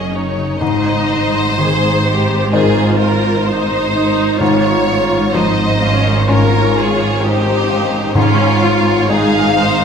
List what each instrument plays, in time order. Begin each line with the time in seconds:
Already playing: double bass section F#1, cello section F#2, harp F#2 C#3 D#4 G#4 C#5 D#5, viola section C#4, felt piano D#4 G#4 C#5, violin section G#4 D#5
0.11 violin section C#4 C#5, viola section D#4, harp D#4
0.37 harp C#3
0.61 double bass section G#1, felt piano G#2, timpani G#2, cello section G#2, harp G#2, viola section D#4, violin section C5 D#5
0.87 harp D#4
1.11 harp C5
1.35 harp A#5
1.57 felt piano D#3, viola section G#4, violin section C5, harp C6
1.82 harp A#5
2.06 viola section G4, harp D#5
2.30 harp C5
2.51 harp D#3, felt piano D#4 A#4 C5, viola section F4, violin section G#4 C5
2.77 harp D#4
3.00 violin section A#4, harp C5
3.25 harp A#5
3.45 violin section C5
3.50 viola section D#4
3.72 harp A#5
3.95 viola section D#4, harp D#5
4.19 harp C5
4.39 double bass section G#1, timpani G#2, cello section G#2, felt piano G#2, harp G#2, viola section F4, violin section C#5
4.66 harp F4
4.88 harp C#4, viola section F4
5.12 harp A#5
5.33 felt piano F3, viola section D#4, violin section C5 D#5
5.59 harp A#5
5.81 viola section C#4, harp F5
6.06 harp A#4
6.28 harp G#2, felt piano C#4 F4 A#4, viola section F4, violin section A#4 C#5
6.54 harp F4
6.76 violin section G#4
7.00 harp A#5
7.22 viola section D#4, violin section G4 C5
7.46 harp A#5
7.70 harp F5
7.93 harp G#4
8.15 double bass section G#1, timpani G#2, felt piano G#2, harp G#2, cello section G#2, viola section C#4, violin section F4 C#5
8.40 harp F4
8.63 viola section F4
8.86 harp G#5
9.09 felt piano G#3, viola section D#4, violin section G#4 F5
9.32 harp G#5
9.56 violin section C5, harp F5